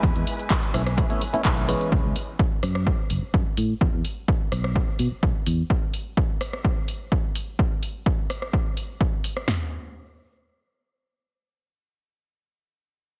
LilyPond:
<<
  \new Staff \with { instrumentName = "String section" } { \time 4/4 \key b \mixolydian \tempo 4 = 127 <b' gis''>1 | r1 | r1 | r1 |
r1 | r1 | r1 | }
  \new Staff \with { instrumentName = "Clav" } { \time 4/4 \key b \mixolydian <gis b dis' e'>4. <a b cis' e'>16 r16 <a b cis' e'>16 <a b cis' e'>16 r16 <a b cis' e'>16 <a b cis' e'>8 <e gis b cis'>8~ | <e gis b cis'>8 r2. r8 | r1 | r1 |
r1 | r1 | r1 | }
  \new Staff \with { instrumentName = "Fingered electric bass" } { \clef bass \time 4/4 \key b \mixolydian e,16 e,16 r4 b,,8 r4 b,,8 r8 | cis,16 cis,16 r4 fis,8 r8 fis,,16 r16 fis,16 r16 a,16 r16 | e,16 e,16 r4 b,,8 r8 b,16 r16 b,,16 r16 e,16 r16 | r1 |
r1 | r1 | r1 | }
  \new DrumStaff \with { instrumentName = "Drums" } \drummode { \time 4/4 <hh bd>16 hh16 hho16 hh16 <hc hh bd>16 hh16 <hho ss>16 <hh ss>16 <hh bd>16 hh16 hho16 hh16 <hc hh bd>16 hh16 hho16 hh16 | bd8 hho8 bd8 <hho ss>16 ss16 bd8 hho8 bd8 hho8 | bd8 hho8 bd8 <hho ss>16 ss16 bd8 hho8 bd8 hho8 | bd8 hho8 bd8 <hho ss>16 ss16 bd8 hho8 bd8 hho8 |
bd8 hho8 bd8 <hho ss>16 ss16 bd8 hho8 bd8 hho16 ss16 | <sn tomfh>4 r4 r4 r4 | r4 r4 r4 r4 | }
>>